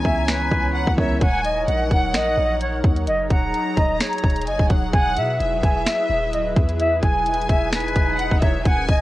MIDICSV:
0, 0, Header, 1, 8, 480
1, 0, Start_track
1, 0, Tempo, 465116
1, 1252, Time_signature, 4, 2, 24, 8
1, 9300, End_track
2, 0, Start_track
2, 0, Title_t, "Violin section"
2, 0, Program_c, 0, 48
2, 0, Note_on_c, 0, 80, 98
2, 731, Note_off_c, 0, 80, 0
2, 773, Note_on_c, 0, 78, 86
2, 1000, Note_off_c, 0, 78, 0
2, 1012, Note_on_c, 0, 76, 84
2, 1240, Note_off_c, 0, 76, 0
2, 1252, Note_on_c, 0, 80, 103
2, 1703, Note_off_c, 0, 80, 0
2, 1732, Note_on_c, 0, 78, 97
2, 3131, Note_off_c, 0, 78, 0
2, 3412, Note_on_c, 0, 82, 93
2, 4571, Note_off_c, 0, 82, 0
2, 4612, Note_on_c, 0, 80, 84
2, 4840, Note_off_c, 0, 80, 0
2, 4852, Note_on_c, 0, 78, 80
2, 5080, Note_off_c, 0, 78, 0
2, 5091, Note_on_c, 0, 78, 117
2, 5543, Note_off_c, 0, 78, 0
2, 5572, Note_on_c, 0, 76, 94
2, 6971, Note_off_c, 0, 76, 0
2, 7252, Note_on_c, 0, 80, 92
2, 8411, Note_off_c, 0, 80, 0
2, 8452, Note_on_c, 0, 78, 95
2, 8680, Note_off_c, 0, 78, 0
2, 8691, Note_on_c, 0, 76, 89
2, 8920, Note_off_c, 0, 76, 0
2, 8931, Note_on_c, 0, 80, 111
2, 9300, Note_off_c, 0, 80, 0
2, 9300, End_track
3, 0, Start_track
3, 0, Title_t, "Flute"
3, 0, Program_c, 1, 73
3, 50, Note_on_c, 1, 76, 82
3, 252, Note_off_c, 1, 76, 0
3, 290, Note_on_c, 1, 71, 87
3, 970, Note_off_c, 1, 71, 0
3, 1013, Note_on_c, 1, 73, 84
3, 1214, Note_off_c, 1, 73, 0
3, 1253, Note_on_c, 1, 78, 106
3, 1454, Note_off_c, 1, 78, 0
3, 1489, Note_on_c, 1, 75, 84
3, 1942, Note_off_c, 1, 75, 0
3, 1969, Note_on_c, 1, 78, 83
3, 2171, Note_off_c, 1, 78, 0
3, 2217, Note_on_c, 1, 75, 99
3, 2666, Note_off_c, 1, 75, 0
3, 2694, Note_on_c, 1, 73, 89
3, 2895, Note_off_c, 1, 73, 0
3, 3172, Note_on_c, 1, 75, 106
3, 3373, Note_off_c, 1, 75, 0
3, 3415, Note_on_c, 1, 78, 81
3, 3865, Note_off_c, 1, 78, 0
3, 3894, Note_on_c, 1, 75, 90
3, 4095, Note_off_c, 1, 75, 0
3, 4133, Note_on_c, 1, 73, 91
3, 4584, Note_off_c, 1, 73, 0
3, 4612, Note_on_c, 1, 75, 84
3, 4814, Note_off_c, 1, 75, 0
3, 5091, Note_on_c, 1, 80, 103
3, 5293, Note_off_c, 1, 80, 0
3, 5336, Note_on_c, 1, 76, 92
3, 5786, Note_off_c, 1, 76, 0
3, 5813, Note_on_c, 1, 80, 85
3, 6014, Note_off_c, 1, 80, 0
3, 6059, Note_on_c, 1, 76, 88
3, 6507, Note_off_c, 1, 76, 0
3, 6535, Note_on_c, 1, 75, 80
3, 6735, Note_off_c, 1, 75, 0
3, 7013, Note_on_c, 1, 76, 104
3, 7214, Note_off_c, 1, 76, 0
3, 7251, Note_on_c, 1, 80, 85
3, 7703, Note_off_c, 1, 80, 0
3, 7730, Note_on_c, 1, 76, 86
3, 7932, Note_off_c, 1, 76, 0
3, 7974, Note_on_c, 1, 71, 88
3, 8652, Note_off_c, 1, 71, 0
3, 8688, Note_on_c, 1, 73, 77
3, 8891, Note_off_c, 1, 73, 0
3, 8935, Note_on_c, 1, 78, 95
3, 9135, Note_off_c, 1, 78, 0
3, 9174, Note_on_c, 1, 75, 86
3, 9300, Note_off_c, 1, 75, 0
3, 9300, End_track
4, 0, Start_track
4, 0, Title_t, "Analog synth pad"
4, 0, Program_c, 2, 89
4, 0, Note_on_c, 2, 56, 86
4, 0, Note_on_c, 2, 64, 78
4, 0, Note_on_c, 2, 73, 94
4, 0, Note_on_c, 2, 82, 78
4, 1214, Note_off_c, 2, 56, 0
4, 1214, Note_off_c, 2, 64, 0
4, 1233, Note_off_c, 2, 82, 0
4, 1253, Note_on_c, 2, 54, 86
4, 1253, Note_on_c, 2, 63, 76
4, 1253, Note_on_c, 2, 70, 77
4, 3153, Note_off_c, 2, 70, 0
4, 3172, Note_on_c, 2, 68, 80
4, 5051, Note_off_c, 2, 73, 0
4, 5054, Note_off_c, 2, 63, 0
4, 5093, Note_on_c, 2, 64, 80
4, 5093, Note_on_c, 2, 71, 94
4, 8891, Note_off_c, 2, 54, 0
4, 8891, Note_off_c, 2, 68, 0
4, 8894, Note_off_c, 2, 64, 0
4, 8894, Note_off_c, 2, 71, 0
4, 8931, Note_on_c, 2, 70, 94
4, 8932, Note_on_c, 2, 54, 86
4, 8932, Note_on_c, 2, 61, 79
4, 8932, Note_on_c, 2, 63, 78
4, 9300, Note_off_c, 2, 54, 0
4, 9300, Note_off_c, 2, 61, 0
4, 9300, Note_off_c, 2, 63, 0
4, 9300, Note_off_c, 2, 70, 0
4, 9300, End_track
5, 0, Start_track
5, 0, Title_t, "Tine electric piano"
5, 0, Program_c, 3, 4
5, 0, Control_c, 3, 64, 127
5, 0, Note_on_c, 3, 52, 66
5, 0, Note_on_c, 3, 59, 63
5, 0, Note_on_c, 3, 61, 60
5, 0, Note_on_c, 3, 64, 76
5, 967, Note_off_c, 3, 52, 0
5, 974, Note_off_c, 3, 59, 0
5, 982, Note_off_c, 3, 61, 0
5, 989, Note_off_c, 3, 64, 0
5, 1001, Note_on_c, 3, 52, 51
5, 1009, Note_on_c, 3, 59, 50
5, 1016, Note_on_c, 3, 61, 47
5, 1023, Note_on_c, 3, 70, 53
5, 1247, Note_off_c, 3, 52, 0
5, 1250, Note_off_c, 3, 59, 0
5, 1254, Note_off_c, 3, 61, 0
5, 1258, Note_off_c, 3, 70, 0
5, 1267, Control_c, 3, 64, 0
5, 1454, Control_c, 3, 64, 127
5, 5107, Control_c, 3, 64, 0
5, 9300, End_track
6, 0, Start_track
6, 0, Title_t, "808-style bass"
6, 0, Program_c, 4, 38
6, 52, Note_on_c, 4, 37, 103
6, 513, Note_off_c, 4, 37, 0
6, 531, Note_on_c, 4, 37, 105
6, 884, Note_off_c, 4, 37, 0
6, 900, Note_on_c, 4, 37, 105
6, 1006, Note_off_c, 4, 37, 0
6, 1012, Note_on_c, 4, 37, 99
6, 1242, Note_off_c, 4, 37, 0
6, 1252, Note_on_c, 4, 27, 110
6, 1713, Note_off_c, 4, 27, 0
6, 1732, Note_on_c, 4, 34, 112
6, 1962, Note_off_c, 4, 34, 0
6, 1972, Note_on_c, 4, 27, 104
6, 2212, Note_on_c, 4, 34, 91
6, 2227, Note_off_c, 4, 27, 0
6, 2440, Note_off_c, 4, 34, 0
6, 2452, Note_on_c, 4, 34, 102
6, 2913, Note_off_c, 4, 34, 0
6, 2932, Note_on_c, 4, 39, 101
6, 3172, Note_on_c, 4, 30, 102
6, 3188, Note_off_c, 4, 39, 0
6, 3400, Note_off_c, 4, 30, 0
6, 3411, Note_on_c, 4, 27, 103
6, 3642, Note_off_c, 4, 27, 0
6, 3892, Note_on_c, 4, 27, 102
6, 4122, Note_off_c, 4, 27, 0
6, 4372, Note_on_c, 4, 27, 111
6, 4612, Note_on_c, 4, 30, 100
6, 4627, Note_off_c, 4, 27, 0
6, 4733, Note_off_c, 4, 30, 0
6, 4740, Note_on_c, 4, 27, 102
6, 4846, Note_off_c, 4, 27, 0
6, 4852, Note_on_c, 4, 27, 104
6, 5082, Note_off_c, 4, 27, 0
6, 5092, Note_on_c, 4, 28, 112
6, 5332, Note_on_c, 4, 47, 95
6, 5348, Note_off_c, 4, 28, 0
6, 5560, Note_off_c, 4, 47, 0
6, 5572, Note_on_c, 4, 28, 108
6, 5803, Note_off_c, 4, 28, 0
6, 5812, Note_on_c, 4, 28, 104
6, 6042, Note_off_c, 4, 28, 0
6, 6292, Note_on_c, 4, 27, 107
6, 6753, Note_off_c, 4, 27, 0
6, 6772, Note_on_c, 4, 40, 99
6, 7233, Note_off_c, 4, 40, 0
6, 7251, Note_on_c, 4, 28, 99
6, 7712, Note_off_c, 4, 28, 0
6, 7731, Note_on_c, 4, 28, 98
6, 8193, Note_off_c, 4, 28, 0
6, 8211, Note_on_c, 4, 28, 106
6, 8564, Note_off_c, 4, 28, 0
6, 8580, Note_on_c, 4, 28, 100
6, 8686, Note_off_c, 4, 28, 0
6, 8692, Note_on_c, 4, 28, 103
6, 8922, Note_off_c, 4, 28, 0
6, 8932, Note_on_c, 4, 27, 114
6, 9162, Note_off_c, 4, 27, 0
6, 9171, Note_on_c, 4, 27, 102
6, 9300, Note_off_c, 4, 27, 0
6, 9300, End_track
7, 0, Start_track
7, 0, Title_t, "Swell"
7, 0, Program_c, 5, 103
7, 7012, Note_on_c, 5, 60, 83
7, 8932, Note_off_c, 5, 60, 0
7, 9300, End_track
8, 0, Start_track
8, 0, Title_t, "Drums"
8, 52, Note_on_c, 9, 36, 88
8, 155, Note_off_c, 9, 36, 0
8, 292, Note_on_c, 9, 38, 121
8, 294, Note_on_c, 9, 26, 93
8, 395, Note_off_c, 9, 38, 0
8, 398, Note_off_c, 9, 26, 0
8, 531, Note_on_c, 9, 36, 98
8, 635, Note_off_c, 9, 36, 0
8, 900, Note_on_c, 9, 36, 88
8, 1003, Note_off_c, 9, 36, 0
8, 1012, Note_on_c, 9, 36, 96
8, 1115, Note_off_c, 9, 36, 0
8, 1252, Note_on_c, 9, 36, 103
8, 1252, Note_on_c, 9, 42, 86
8, 1355, Note_off_c, 9, 36, 0
8, 1355, Note_off_c, 9, 42, 0
8, 1491, Note_on_c, 9, 42, 82
8, 1594, Note_off_c, 9, 42, 0
8, 1734, Note_on_c, 9, 42, 71
8, 1838, Note_off_c, 9, 42, 0
8, 1972, Note_on_c, 9, 36, 86
8, 1972, Note_on_c, 9, 42, 79
8, 2075, Note_off_c, 9, 36, 0
8, 2076, Note_off_c, 9, 42, 0
8, 2212, Note_on_c, 9, 38, 126
8, 2215, Note_on_c, 9, 26, 96
8, 2215, Note_on_c, 9, 42, 92
8, 2316, Note_off_c, 9, 38, 0
8, 2318, Note_off_c, 9, 26, 0
8, 2318, Note_off_c, 9, 42, 0
8, 2693, Note_on_c, 9, 42, 86
8, 2797, Note_off_c, 9, 42, 0
8, 2932, Note_on_c, 9, 36, 90
8, 2933, Note_on_c, 9, 42, 61
8, 3035, Note_off_c, 9, 36, 0
8, 3036, Note_off_c, 9, 42, 0
8, 3060, Note_on_c, 9, 42, 61
8, 3163, Note_off_c, 9, 42, 0
8, 3172, Note_on_c, 9, 42, 88
8, 3275, Note_off_c, 9, 42, 0
8, 3411, Note_on_c, 9, 36, 95
8, 3411, Note_on_c, 9, 42, 78
8, 3514, Note_off_c, 9, 36, 0
8, 3514, Note_off_c, 9, 42, 0
8, 3655, Note_on_c, 9, 42, 70
8, 3758, Note_off_c, 9, 42, 0
8, 3892, Note_on_c, 9, 36, 86
8, 3892, Note_on_c, 9, 42, 79
8, 3995, Note_off_c, 9, 36, 0
8, 3995, Note_off_c, 9, 42, 0
8, 4132, Note_on_c, 9, 38, 123
8, 4132, Note_on_c, 9, 42, 55
8, 4135, Note_on_c, 9, 26, 97
8, 4196, Note_off_c, 9, 42, 0
8, 4196, Note_on_c, 9, 42, 65
8, 4235, Note_off_c, 9, 38, 0
8, 4238, Note_off_c, 9, 26, 0
8, 4260, Note_off_c, 9, 42, 0
8, 4260, Note_on_c, 9, 42, 80
8, 4316, Note_off_c, 9, 42, 0
8, 4316, Note_on_c, 9, 42, 89
8, 4372, Note_off_c, 9, 42, 0
8, 4372, Note_on_c, 9, 36, 94
8, 4372, Note_on_c, 9, 42, 50
8, 4436, Note_off_c, 9, 42, 0
8, 4436, Note_on_c, 9, 42, 62
8, 4475, Note_off_c, 9, 36, 0
8, 4500, Note_off_c, 9, 42, 0
8, 4500, Note_on_c, 9, 42, 72
8, 4556, Note_off_c, 9, 42, 0
8, 4556, Note_on_c, 9, 42, 81
8, 4613, Note_off_c, 9, 42, 0
8, 4613, Note_on_c, 9, 42, 84
8, 4717, Note_off_c, 9, 42, 0
8, 4740, Note_on_c, 9, 36, 84
8, 4843, Note_off_c, 9, 36, 0
8, 4850, Note_on_c, 9, 42, 82
8, 4852, Note_on_c, 9, 36, 94
8, 4953, Note_off_c, 9, 42, 0
8, 4955, Note_off_c, 9, 36, 0
8, 5092, Note_on_c, 9, 36, 105
8, 5092, Note_on_c, 9, 42, 84
8, 5195, Note_off_c, 9, 36, 0
8, 5195, Note_off_c, 9, 42, 0
8, 5331, Note_on_c, 9, 42, 80
8, 5434, Note_off_c, 9, 42, 0
8, 5575, Note_on_c, 9, 42, 71
8, 5678, Note_off_c, 9, 42, 0
8, 5812, Note_on_c, 9, 36, 87
8, 5813, Note_on_c, 9, 42, 80
8, 5915, Note_off_c, 9, 36, 0
8, 5916, Note_off_c, 9, 42, 0
8, 6052, Note_on_c, 9, 38, 121
8, 6055, Note_on_c, 9, 26, 96
8, 6055, Note_on_c, 9, 42, 92
8, 6155, Note_off_c, 9, 38, 0
8, 6158, Note_off_c, 9, 26, 0
8, 6158, Note_off_c, 9, 42, 0
8, 6534, Note_on_c, 9, 42, 87
8, 6637, Note_off_c, 9, 42, 0
8, 6772, Note_on_c, 9, 36, 93
8, 6772, Note_on_c, 9, 42, 61
8, 6875, Note_off_c, 9, 36, 0
8, 6876, Note_off_c, 9, 42, 0
8, 6900, Note_on_c, 9, 42, 60
8, 7003, Note_off_c, 9, 42, 0
8, 7012, Note_on_c, 9, 42, 85
8, 7115, Note_off_c, 9, 42, 0
8, 7251, Note_on_c, 9, 36, 91
8, 7251, Note_on_c, 9, 42, 82
8, 7354, Note_off_c, 9, 36, 0
8, 7354, Note_off_c, 9, 42, 0
8, 7492, Note_on_c, 9, 42, 62
8, 7572, Note_off_c, 9, 42, 0
8, 7572, Note_on_c, 9, 42, 61
8, 7652, Note_off_c, 9, 42, 0
8, 7652, Note_on_c, 9, 42, 63
8, 7731, Note_on_c, 9, 36, 87
8, 7732, Note_off_c, 9, 42, 0
8, 7732, Note_on_c, 9, 42, 81
8, 7835, Note_off_c, 9, 36, 0
8, 7835, Note_off_c, 9, 42, 0
8, 7972, Note_on_c, 9, 38, 120
8, 7972, Note_on_c, 9, 42, 89
8, 7975, Note_on_c, 9, 26, 100
8, 8052, Note_off_c, 9, 42, 0
8, 8052, Note_on_c, 9, 42, 71
8, 8075, Note_off_c, 9, 38, 0
8, 8078, Note_off_c, 9, 26, 0
8, 8132, Note_off_c, 9, 42, 0
8, 8132, Note_on_c, 9, 42, 53
8, 8211, Note_off_c, 9, 42, 0
8, 8211, Note_on_c, 9, 36, 96
8, 8211, Note_on_c, 9, 42, 83
8, 8314, Note_off_c, 9, 42, 0
8, 8315, Note_off_c, 9, 36, 0
8, 8453, Note_on_c, 9, 42, 88
8, 8556, Note_off_c, 9, 42, 0
8, 8580, Note_on_c, 9, 36, 89
8, 8683, Note_off_c, 9, 36, 0
8, 8689, Note_on_c, 9, 42, 80
8, 8692, Note_on_c, 9, 36, 95
8, 8792, Note_off_c, 9, 42, 0
8, 8795, Note_off_c, 9, 36, 0
8, 8931, Note_on_c, 9, 42, 90
8, 8932, Note_on_c, 9, 36, 104
8, 9034, Note_off_c, 9, 42, 0
8, 9035, Note_off_c, 9, 36, 0
8, 9170, Note_on_c, 9, 42, 80
8, 9171, Note_on_c, 9, 36, 93
8, 9273, Note_off_c, 9, 42, 0
8, 9274, Note_off_c, 9, 36, 0
8, 9300, End_track
0, 0, End_of_file